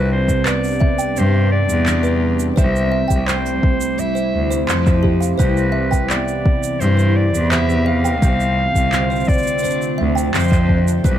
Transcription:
Already playing: cello C2, twelve-string acoustic guitar C3 D4, ambient pad G3 D4 G4
0.12 clarinet C5
0.28 kick, shaker
0.45 twelve-string acoustic guitar B3, music box B4, clarinet D5, clap, shaker
0.64 shaker
0.67 shaker
0.70 shaker
0.73 shaker
0.80 music box E5, kick
0.98 music box G5, shaker
1.16 cello G2, twelve-string acoustic guitar D4, clarinet C5, shaker
1.52 clarinet D5
1.69 cello E2, shaker
1.86 twelve-string acoustic guitar B3 D4 G4, clap, shaker
2.03 music box B4, shaker
2.39 shaker
2.56 cello C2, twelve-string acoustic guitar C3, ambient pad A3 E4 G4, music box C5, clarinet E5, kick, shaker
2.76 shaker
2.92 music box E5
3.08 cello C2, music box G5, kick, shaker
3.27 twelve-string acoustic guitar C4, clarinet C5, clap, shaker
3.46 shaker
3.63 kick
3.81 shaker
3.98 twelve-string acoustic guitar E4, clarinet E5, shaker
4.15 music box C5, shaker
4.34 cello D2
4.51 music box C5, shaker
4.67 cello F2, twelve-string acoustic guitar C4 E4 A4, music box C6, clap, shaker
4.86 kick, clap, shaker
5.03 music box G4, kick
5.21 music box F5, shaker
5.38 cello C2, twelve-string acoustic guitar C3, ambient pad E3, clarinet B4, music box C5, kick, shaker
5.57 shaker
5.72 music box E5
5.91 music box G5, kick, shaker
6.10 twelve-string acoustic guitar B3, clarinet D5, clap, shaker
6.28 shaker
6.46 kick
6.63 shaker
6.80 cello G2, twelve-string acoustic guitar E4, clarinet C5, shaker
6.97 music box C5, shaker
7.16 clarinet D5
7.33 cello E2, shaker
7.51 twelve-string acoustic guitar B3 G4, music box C5, clarinet E5, clap, shaker
7.70 shaker
7.86 music box E5, clarinet F5
8.04 music box G5, shaker
8.22 cello C2, twelve-string acoustic guitar C3, ambient pad D3 A3 C4 F4, kick, shaker
8.40 shaker
8.75 cello C2, kick, shaker
8.92 twelve-string acoustic guitar C4, clap, shaker
9.10 music box C5, shaker
9.16 shaker
9.20 shaker
9.25 clarinet D5, kick, shaker
9.29 shaker
9.33 shaker
9.38 shaker
9.43 shaker
9.47 shaker
9.59 shaker
9.63 twelve-string acoustic guitar D4, music box C5, shaker
9.70 shaker
9.82 shaker
9.98 cello D2, music box E5
10.15 music box G5, shaker
10.34 cello F2, twelve-string acoustic guitar C4 D4 A4, clarinet C5, clap, shaker
10.39 shaker
10.44 shaker
10.48 kick, clap, shaker
10.53 shaker
10.69 kick
10.88 shaker
11.03 cello C2, twelve-string acoustic guitar C3, ambient pad G3 D4 F4 G4, clarinet B4, kick, shaker

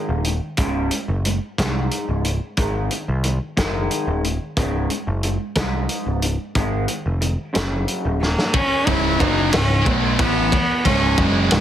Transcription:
Already playing: clean electric guitar G#2 D#3 G#3
0.09 picked electric bass D#1
0.24 clean electric guitar G#2 D#3, closed hi-hat
0.57 picked electric bass C#1, clean electric guitar C#2 G#2 C#3, kick, closed hi-hat
0.91 clean electric guitar C#2 G#2, closed hi-hat
1.08 picked electric bass F#1
1.25 clean electric guitar C#2 G#2, closed hi-hat
1.58 picked electric bass C2, clean electric guitar G#2, kick, snare, closed hi-hat
1.91 closed hi-hat
2.09 picked electric bass C#1
2.25 clean electric guitar C#2 G#2, closed hi-hat
2.57 picked electric bass G#1, clean electric guitar G#2 D#3 G#3, kick, closed hi-hat
2.91 clean electric guitar G#2 D#3, closed hi-hat
3.08 picked electric bass C2
3.24 clean electric guitar G#2 D#3, closed hi-hat
3.57 picked electric bass F#1, clean electric guitar G#2 D#3 G#3, kick, snare, closed hi-hat
3.91 closed hi-hat
4.07 picked electric bass D#1
4.24 clean electric guitar G#2 D#3, closed hi-hat
4.57 picked electric bass C#1, clean electric guitar C#2 G#2 C#3, kick, closed hi-hat
4.90 clean electric guitar C#2 G#2, closed hi-hat
5.07 picked electric bass F#1
5.23 clean electric guitar C#2 G#2, closed hi-hat
5.55 picked electric bass C2, clean electric guitar G#2, kick, snare, closed hi-hat
5.89 closed hi-hat
6.06 picked electric bass C#1
6.22 clean electric guitar C#2 G#2, closed hi-hat
6.55 picked electric bass G#1, clean electric guitar G#2 D#3 G#3, kick, closed hi-hat
6.88 clean electric guitar G#2 D#3, closed hi-hat
7.06 picked electric bass F1
7.21 clean electric guitar G#2 D#3, closed hi-hat
7.53 picked electric bass F#1, clean electric guitar F#2 C#3 F#3, snare, closed hi-hat
7.88 closed hi-hat
8.05 picked electric bass D#1
8.21 clean electric guitar F#2 C#3, cello A#3, snare
8.38 snare
8.54 cello C#4, muted picked electric bass stroke, muted distorted electric guitar stroke, muted overdriven electric guitar stroke, kick, ride
8.87 picked electric bass C#1, distorted electric guitar C#2 G#2 C#3, cello E4, kick, ride
9.19 picked electric bass F#1, distorted electric guitar F#2 C#3 F#3, cello D#4, kick, ride
9.53 picked electric bass C#1, distorted electric guitar C#2 G#2, cello C#4, snare, ride
9.85 picked electric bass B1, distorted electric guitar B2 F#3 B3, cello A3, kick, ride
10.19 picked electric bass A1, distorted electric guitar A2 E3 A3, cello B3, kick, ride
10.52 muted overdriven electric guitar stroke, muted distorted electric guitar stroke, kick, ride
10.85 picked electric bass C#1, distorted electric guitar C#2 G#2 C#3, cello C#4, kick, ride
11.18 picked electric bass F#1, distorted electric guitar F#2 C#3 F#3, cello G#3, kick, ride
11.50 picked electric bass C#1, distorted electric guitar C#2 G#2, cello G#3, snare, ride

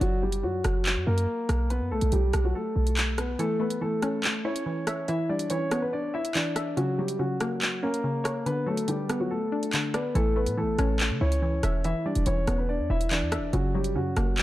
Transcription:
0.01 808-style bass F#1, grand piano F#3 F#4, closed hi-hat
0.22 grand piano G3 G4
0.32 closed hi-hat
0.43 808-style bass F#2, grand piano F#3 F#4
0.64 808-style bass F#1, cross-stick, closed hi-hat
0.86 clap, closed hi-hat
0.96 808-style bass F#2
1.07 808-style bass F#2, grand piano A#3 A#4
1.18 closed hi-hat
1.49 808-style bass B1, cross-stick, closed hi-hat
1.70 grand piano B3 B4, closed hi-hat
1.81 808-style bass F#2
1.91 808-style bass B1, grand piano A3 A4
2.01 808-style bass B1, closed hi-hat
2.12 808-style bass B1, grand piano G3 G4, closed hi-hat
2.33 808-style bass B1, cross-stick, closed hi-hat
2.44 grand piano F#3 F#4
2.55 grand piano A3 A4
2.76 808-style bass B1
2.87 closed hi-hat
2.97 clap, closed hi-hat
3.18 grand piano B3 B4, cross-stick, closed hi-hat
3.39 synth pluck E3, grand piano A3 A4, closed hi-hat
3.60 synth pluck A3, grand piano B3 B4
3.70 closed hi-hat
3.81 synth pluck E3, grand piano A3 A4
4.02 synth pluck C#4, cross-stick, closed hi-hat
4.24 clap, closed hi-hat
4.45 grand piano C#4 C#5, synth pluck E4
4.56 closed hi-hat
4.66 synth pluck E3
4.87 synth pluck E5, cross-stick, closed hi-hat
5.08 synth pluck E3, grand piano E4 E5, closed hi-hat
5.29 synth pluck G3, grand piano D4 D5
5.39 closed hi-hat
5.50 synth pluck E3, grand piano C#4 C#5, closed hi-hat
5.71 synth pluck B3, cross-stick, closed hi-hat
5.82 grand piano B3 B4
5.93 grand piano D4 D5
6.14 grand piano E4 E5, synth pluck E4
6.25 closed hi-hat
6.35 synth pluck E3, grand piano D4 D5, clap, closed hi-hat
6.56 synth pluck E5, cross-stick, closed hi-hat
6.77 synth pluck C#3, grand piano F#3 F#4, closed hi-hat
6.98 synth pluck F#3, grand piano G3 G4
7.08 closed hi-hat
7.19 synth pluck C#3, grand piano F#3 F#4
7.40 synth pluck A#3, cross-stick, closed hi-hat
7.62 clap, closed hi-hat
7.83 grand piano A#3 A#4, synth pluck C#4
7.94 closed hi-hat
8.04 synth pluck C#3
8.24 synth pluck C#5, cross-stick, closed hi-hat
8.46 synth pluck D3, grand piano B3 B4, closed hi-hat
8.66 synth pluck F#3, grand piano A3 A4
8.77 closed hi-hat
8.88 synth pluck D3, grand piano G3 G4, closed hi-hat
9.09 synth pluck B3, cross-stick, closed hi-hat
9.20 grand piano F#3 F#4
9.31 grand piano A3 A4
9.52 synth pluck D4
9.63 closed hi-hat
9.73 synth pluck D3, clap, closed hi-hat
9.94 grand piano B3 B4, synth pluck D5, cross-stick, closed hi-hat
10.15 808-style bass A1, synth pluck E3, grand piano A3 A4, closed hi-hat
10.36 synth pluck A3, grand piano B3 B4
10.46 808-style bass A2, closed hi-hat
10.57 synth pluck E3, grand piano A3 A4
10.63 808-style bass A1
10.79 808-style bass A1, synth pluck C#4, cross-stick, closed hi-hat
11.00 clap, closed hi-hat
11.10 808-style bass C#3
11.21 808-style bass C#2, grand piano C#4 C#5, synth pluck E4
11.32 closed hi-hat
11.42 synth pluck E3
11.63 808-style bass E1, synth pluck E5, cross-stick, closed hi-hat
11.84 synth pluck E3, grand piano E4 E5, closed hi-hat
12.06 synth pluck G3, grand piano D4 D5
12.15 808-style bass E1, closed hi-hat
12.26 808-style bass E1, synth pluck E3, grand piano C#4 C#5, closed hi-hat
12.47 808-style bass E1, synth pluck B3, cross-stick, closed hi-hat
12.58 grand piano B3 B4
12.69 grand piano D4 D5
12.80 808-style bass E2
12.90 808-style bass E1, synth pluck E4, grand piano E4 E5
13.01 closed hi-hat
13.11 synth pluck E3, grand piano D4 D5, clap, closed hi-hat
13.22 808-style bass E2
13.32 synth pluck E5, cross-stick, closed hi-hat
13.38 808-style bass E1
13.53 808-style bass F#1, synth pluck C#3, grand piano F#3 F#4, closed hi-hat
13.74 synth pluck F#3, grand piano G3 G4
13.84 closed hi-hat
13.95 808-style bass F#2, synth pluck C#3, grand piano F#3 F#4
14.16 808-style bass F#1, synth pluck A#3, cross-stick, closed hi-hat
14.38 clap, closed hi-hat

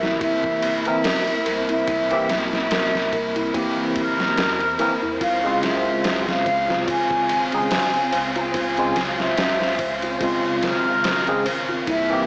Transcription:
Already playing: sub bass C2, string section C3 A#3 E4, tine electric piano E3 A#3 C4 G4, synth texture C4 C5, flute E5
0.02 music box E4, snare
0.21 music box E4, flute E5, kick, ride
0.44 kick
0.62 sub bass G1, ride
0.85 tine electric piano E3 A#3 C4 A#4, flute E5, ride
1.04 sub bass G1, music box A#4, snare, open hi-hat
1.27 ride
1.46 sub bass C2, music box A#4, ride
1.69 music box E4, flute E5, ride
1.87 sub bass C2, music box E4, kick, ride
2.11 tine electric piano E3 A#3 C4 G4, ride
2.29 snare, ride
2.53 flute E5, snare
2.71 music box A#4, snare, ride
2.95 snare
3.13 music box A#4, kick, ride
3.36 music box E4, ride
3.54 tine electric piano E3 A#3 C4 G4, music box E4, kick, ride
3.96 sub bass G1, flute A#4, kick, ride
4.20 snare
4.37 sub bass E2, music box A#4, snare, ride
4.60 ride
4.79 sub bass G1, tine electric piano E3 A#3 C4 A#4, music box A#4, ride
5.02 sub bass E2, music box E4
5.21 sub bass C#2, string section C#3 C4 F4, music box F4, flute F5, kick, ride
5.43 tine electric piano C#3 G#3 C4 F4
5.63 flute E5, snare, ride
6.04 music box C5, snare, ride
6.28 flute F5, snare
6.46 music box C5, kick, ride
6.69 music box F4, snare
6.88 music box F4, flute G#5, kick, ride
7.11 kick
7.29 sub bass G#1, ride
7.52 tine electric piano C#3 G#3 C4 G#4, flute A#5, ride
7.57 flute G#5
7.71 sub bass G#1, music box C5, snare, open hi-hat
7.94 ride
8.13 sub bass C#2, music box C5, ride
8.36 music box F4, flute A#5, ride
8.40 flute G#5
8.54 sub bass C#2, music box F4, kick, ride
8.77 tine electric piano C#3 G#3 C4 F4, ride
8.96 snare, ride
9.20 flute E5, snare
9.37 music box C5, snare, ride
9.62 snare
9.79 music box C5, kick, ride
10.02 music box F4, ride
10.20 tine electric piano C#3 G#3 C4 F4, music box F4, kick, ride
10.62 sub bass G#1, flute A#4, snare, ride
11.04 music box C5, snare, ride
11.27 tine electric piano C#3 G#3 C4 G#4, ride
11.46 music box C5, ride
11.69 music box F4
11.87 sub bass C2, string section C3 A#3 E4, music box E4, flute E5, kick, ride
12.10 tine electric piano E3 A#3 C4 G4

